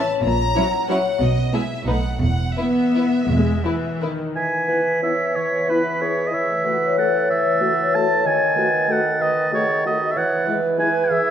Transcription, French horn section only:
4.68 B3 E4
5.02 B3 E4
5.69 B3 E4
6.02 B3 E4
6.65 A3 F#4
6.98 A3 F#4
7.61 A3 F#4
7.95 A3 F#4
8.56 A3 F#4
8.88 A3 F#4
9.52 A3 F#4
9.85 A3 F#4
10.47 G#3 E4
10.78 G#3 E4

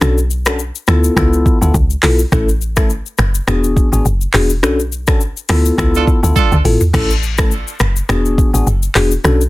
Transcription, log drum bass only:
0.01 B1
0.88 D2
1.17 C#2
1.62 D2
1.74 C#2
2.03 B1
2.32 A1
3.19 F#1
3.48 E1
3.92 G#1
4.05 F#1
4.34 E1
4.63 B1
5.50 D2
5.78 C#2
6.23 D2
6.52 C#2
6.65 G#1
6.94 A1
7.80 F#1
8.09 E1
8.54 G#1
8.67 F#1
8.96 E1
9.25 B1

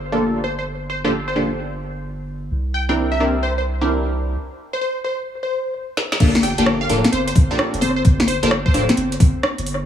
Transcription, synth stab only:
0.12 A#3 D4 F4 G4 A4
1.04 A#3 D4 F4 G4 A4
1.36 A#3 D4 F4 G4 A4
2.89 C4 D4 E4 G4 A#4
3.20 C4 D4 E4 G4 A#4
3.81 C4 D4 E4 G4 A#4
6.20 A#3 D4 F4 G4 A4
6.58 A#3 D4 F4 G4 A4
6.90 A#3 D4 F4 G4 A4
7.51 A#3 D4 F4 G4 A4
8.43 A#3 D4 F4 G4 A4
8.74 A#3 D4 F4 G4 A4

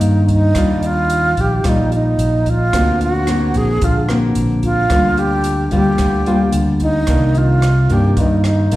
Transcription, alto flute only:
Already playing: D#4
0.33 D#4
0.86 F4
1.41 G4
1.69 D#4
1.95 D#4
2.50 F4
3.03 F#4
3.57 G#4
3.84 F4
4.64 F4
5.19 G4
5.74 G4
6.83 D#4
7.38 F4
7.93 G4
8.19 D#4
8.47 D#4

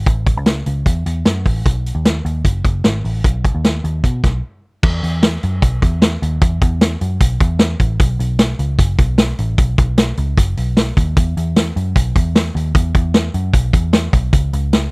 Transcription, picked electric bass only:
0.06 A1
0.37 C#2
0.66 C#2
0.86 E2
1.06 E2
1.26 F#2
1.46 A1
1.65 B1
1.95 D#2
2.25 D#2
2.45 F#1
2.65 F#1
2.85 G#1
3.04 A1
3.25 B1
3.55 D#2
3.84 D#2
4.04 B2
4.24 B1
4.83 E2
5.03 E2
5.44 F#2
5.62 B1
5.82 E2
6.22 D#2
6.42 E2
6.62 E2
7.01 F#2
7.21 B1
7.41 E2
7.80 A1
8.00 B1
8.19 B1
8.59 C#2
8.79 F#1
8.99 B1
9.39 A1
9.58 B1
9.78 B1
10.18 C#2
10.37 F#1
10.57 B1
10.97 D#2
11.17 E2
11.37 E2
11.76 F#2
11.96 B1
12.16 E2
12.55 D#2
12.75 E2
12.95 E2
13.34 F#2
13.54 B1
13.74 E2
14.13 B1
14.33 C#2
14.53 C#2

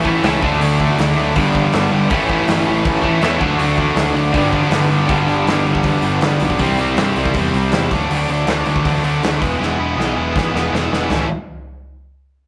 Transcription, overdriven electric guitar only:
0.04 A2 E3 A3
0.23 A2 E3 A3
0.42 D3 A3 D4
1.36 G2 D3 G3
2.09 A2 E3 A3
3.02 A2 E3 A3
3.21 A2 E3 A3
3.39 D3 A3 D4
4.32 G2 D3 G3
5.06 G2 D3 G3
6.59 C3 G3 C4

